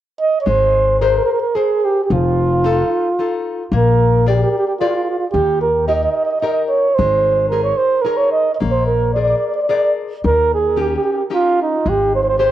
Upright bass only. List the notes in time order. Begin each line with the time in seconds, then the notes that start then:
0.47 G#1
2.10 F1
3.72 A#1
5.34 D#2
6.99 G#1
8.62 A#1
10.24 D#2
11.86 G#1